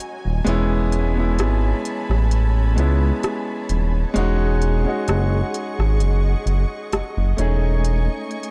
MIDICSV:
0, 0, Header, 1, 5, 480
1, 0, Start_track
1, 0, Tempo, 923077
1, 241, Time_signature, 4, 2, 24, 8
1, 4424, End_track
2, 0, Start_track
2, 0, Title_t, "String section"
2, 0, Program_c, 0, 48
2, 0, Note_on_c, 0, 66, 73
2, 0, Note_on_c, 0, 73, 64
2, 0, Note_on_c, 0, 75, 70
2, 0, Note_on_c, 0, 80, 79
2, 221, Note_off_c, 0, 73, 0
2, 221, Note_off_c, 0, 75, 0
2, 222, Note_off_c, 0, 66, 0
2, 241, Note_on_c, 0, 73, 65
2, 241, Note_on_c, 0, 81, 75
2, 241, Note_on_c, 0, 83, 81
2, 2139, Note_off_c, 0, 80, 0
2, 2142, Note_off_c, 0, 73, 0
2, 2142, Note_off_c, 0, 81, 0
2, 2142, Note_off_c, 0, 83, 0
2, 2161, Note_on_c, 0, 68, 75
2, 2161, Note_on_c, 0, 75, 69
2, 2161, Note_on_c, 0, 78, 65
2, 2161, Note_on_c, 0, 85, 80
2, 3824, Note_off_c, 0, 78, 0
2, 3824, Note_off_c, 0, 85, 0
2, 3825, Note_off_c, 0, 68, 0
2, 3841, Note_on_c, 0, 80, 67
2, 3842, Note_on_c, 0, 57, 74
2, 3842, Note_on_c, 0, 85, 87
2, 4424, Note_off_c, 0, 57, 0
2, 4424, Note_off_c, 0, 75, 0
2, 4424, Note_off_c, 0, 80, 0
2, 4424, Note_off_c, 0, 85, 0
2, 4424, End_track
3, 0, Start_track
3, 0, Title_t, "Grand piano"
3, 0, Program_c, 1, 0
3, 0, Control_c, 1, 64, 127
3, 232, Note_on_c, 1, 56, 110
3, 238, Note_on_c, 1, 59, 98
3, 246, Note_on_c, 1, 61, 95
3, 249, Control_c, 1, 64, 0
3, 253, Note_on_c, 1, 64, 113
3, 334, Control_c, 1, 64, 127
3, 573, Note_off_c, 1, 56, 0
3, 577, Note_off_c, 1, 59, 0
3, 580, Note_off_c, 1, 61, 0
3, 584, Note_off_c, 1, 64, 0
3, 600, Note_on_c, 1, 56, 76
3, 608, Note_on_c, 1, 59, 76
3, 615, Note_on_c, 1, 61, 71
3, 621, Note_on_c, 1, 64, 88
3, 1371, Note_off_c, 1, 56, 0
3, 1374, Note_off_c, 1, 59, 0
3, 1378, Note_off_c, 1, 61, 0
3, 1381, Note_off_c, 1, 64, 0
3, 1433, Note_on_c, 1, 56, 80
3, 1440, Note_on_c, 1, 59, 73
3, 1447, Note_on_c, 1, 61, 70
3, 1454, Note_on_c, 1, 64, 81
3, 2101, Note_off_c, 1, 56, 0
3, 2105, Note_off_c, 1, 59, 0
3, 2108, Note_off_c, 1, 61, 0
3, 2112, Note_off_c, 1, 64, 0
3, 2152, Note_on_c, 1, 56, 112
3, 2159, Note_on_c, 1, 61, 100
3, 2166, Note_on_c, 1, 63, 98
3, 2168, Control_c, 1, 64, 0
3, 2173, Note_on_c, 1, 66, 114
3, 2247, Control_c, 1, 64, 127
3, 2493, Note_off_c, 1, 56, 0
3, 2497, Note_off_c, 1, 61, 0
3, 2500, Note_off_c, 1, 63, 0
3, 2504, Note_off_c, 1, 66, 0
3, 2521, Note_on_c, 1, 56, 79
3, 2528, Note_on_c, 1, 61, 75
3, 2535, Note_on_c, 1, 63, 72
3, 2542, Note_on_c, 1, 66, 88
3, 3398, Note_off_c, 1, 56, 0
3, 3402, Note_off_c, 1, 61, 0
3, 3405, Note_off_c, 1, 63, 0
3, 3409, Note_off_c, 1, 66, 0
3, 3832, Note_on_c, 1, 57, 80
3, 3840, Note_on_c, 1, 61, 77
3, 3846, Note_on_c, 1, 63, 74
3, 3848, Control_c, 1, 64, 0
3, 3853, Note_on_c, 1, 68, 88
3, 3940, Control_c, 1, 64, 127
3, 4391, Note_off_c, 1, 57, 0
3, 4395, Note_off_c, 1, 61, 0
3, 4399, Note_off_c, 1, 63, 0
3, 4402, Note_off_c, 1, 68, 0
3, 4424, End_track
4, 0, Start_track
4, 0, Title_t, "Analog synth bass"
4, 0, Program_c, 2, 38
4, 130, Note_on_c, 2, 27, 77
4, 214, Note_off_c, 2, 27, 0
4, 239, Note_on_c, 2, 28, 102
4, 719, Note_on_c, 2, 32, 83
4, 727, Note_off_c, 2, 28, 0
4, 902, Note_off_c, 2, 32, 0
4, 1090, Note_on_c, 2, 33, 93
4, 1440, Note_on_c, 2, 37, 95
4, 1448, Note_off_c, 2, 33, 0
4, 1623, Note_off_c, 2, 37, 0
4, 1921, Note_on_c, 2, 27, 92
4, 2103, Note_off_c, 2, 27, 0
4, 2161, Note_on_c, 2, 28, 101
4, 2525, Note_off_c, 2, 28, 0
4, 2641, Note_on_c, 2, 30, 93
4, 2823, Note_off_c, 2, 30, 0
4, 3010, Note_on_c, 2, 32, 85
4, 3120, Note_on_c, 2, 30, 99
4, 3128, Note_off_c, 2, 32, 0
4, 3302, Note_off_c, 2, 30, 0
4, 3359, Note_on_c, 2, 30, 90
4, 3458, Note_off_c, 2, 30, 0
4, 3600, Note_on_c, 2, 30, 49
4, 3653, Note_off_c, 2, 30, 0
4, 3729, Note_on_c, 2, 30, 84
4, 3814, Note_off_c, 2, 30, 0
4, 3840, Note_on_c, 2, 28, 96
4, 4204, Note_off_c, 2, 28, 0
4, 4424, End_track
5, 0, Start_track
5, 0, Title_t, "Drums"
5, 1, Note_on_c, 9, 42, 71
5, 53, Note_off_c, 9, 42, 0
5, 242, Note_on_c, 9, 42, 71
5, 294, Note_off_c, 9, 42, 0
5, 480, Note_on_c, 9, 42, 61
5, 532, Note_off_c, 9, 42, 0
5, 721, Note_on_c, 9, 42, 68
5, 727, Note_on_c, 9, 37, 108
5, 773, Note_off_c, 9, 42, 0
5, 779, Note_off_c, 9, 37, 0
5, 963, Note_on_c, 9, 42, 77
5, 1015, Note_off_c, 9, 42, 0
5, 1097, Note_on_c, 9, 37, 67
5, 1149, Note_off_c, 9, 37, 0
5, 1203, Note_on_c, 9, 42, 68
5, 1255, Note_off_c, 9, 42, 0
5, 1444, Note_on_c, 9, 42, 62
5, 1496, Note_off_c, 9, 42, 0
5, 1682, Note_on_c, 9, 42, 58
5, 1685, Note_on_c, 9, 37, 104
5, 1734, Note_off_c, 9, 42, 0
5, 1737, Note_off_c, 9, 37, 0
5, 1920, Note_on_c, 9, 42, 69
5, 1972, Note_off_c, 9, 42, 0
5, 2162, Note_on_c, 9, 42, 74
5, 2214, Note_off_c, 9, 42, 0
5, 2400, Note_on_c, 9, 42, 60
5, 2452, Note_off_c, 9, 42, 0
5, 2640, Note_on_c, 9, 42, 71
5, 2647, Note_on_c, 9, 37, 106
5, 2692, Note_off_c, 9, 42, 0
5, 2699, Note_off_c, 9, 37, 0
5, 2882, Note_on_c, 9, 42, 75
5, 2934, Note_off_c, 9, 42, 0
5, 3015, Note_on_c, 9, 37, 69
5, 3067, Note_off_c, 9, 37, 0
5, 3121, Note_on_c, 9, 42, 66
5, 3173, Note_off_c, 9, 42, 0
5, 3364, Note_on_c, 9, 42, 61
5, 3416, Note_off_c, 9, 42, 0
5, 3601, Note_on_c, 9, 42, 56
5, 3605, Note_on_c, 9, 37, 100
5, 3653, Note_off_c, 9, 42, 0
5, 3657, Note_off_c, 9, 37, 0
5, 3839, Note_on_c, 9, 42, 70
5, 3891, Note_off_c, 9, 42, 0
5, 4080, Note_on_c, 9, 42, 74
5, 4132, Note_off_c, 9, 42, 0
5, 4320, Note_on_c, 9, 42, 41
5, 4372, Note_off_c, 9, 42, 0
5, 4385, Note_on_c, 9, 42, 47
5, 4424, Note_off_c, 9, 42, 0
5, 4424, End_track
0, 0, End_of_file